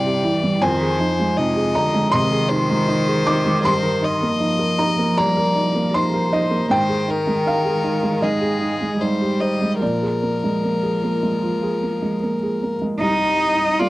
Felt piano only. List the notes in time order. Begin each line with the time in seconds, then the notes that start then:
Already playing: G2 G3 E4 G4 E5 G5
0.06 G4
0.24 E4
0.43 G3
0.62 F2 G#5
0.81 G#4
1.00 D#4
1.20 G#3
1.38 D#4
1.56 G#4
1.75 D#5 A#5
1.94 G#3
2.12 C3 C6
2.31 G#4
2.51 D#4
2.70 G#3
2.88 D#4
3.07 G#4
3.27 D#4 D6
3.46 G#3
3.64 G2 C6
3.84 A#4
4.02 D#4
4.22 A#3
4.40 D#4
4.59 A#4
4.78 D#4 A#5
4.98 A#3
5.17 G3 A#5
5.37 A#4
5.55 D#4
5.75 A#3
5.94 D#4 C6
6.13 A#4
6.32 D#4 D#5
6.50 A#3
6.69 G#2 G5
6.89 G#4
7.08 D#4
7.27 G#3
7.46 D#4 F5
7.65 G#4
7.84 D#4
8.03 G#3
8.22 D#3 D#5
8.41 G#4
8.61 D#4
8.81 G#3
9.01 D#4
9.21 G4
9.41 D#4 C5
9.62 G#3
9.82 A#2 D5
10.02 G#4
10.23 A#3
10.44 G#3
10.64 A#3
10.83 G#4
11.03 A#3
11.23 G#3
11.43 F3
11.63 G#4
11.83 A#3
12.02 G#3
12.23 A#3
12.43 G#4
12.63 A#3
12.82 G#3
13.02 C2
13.80 G3 A#3 G4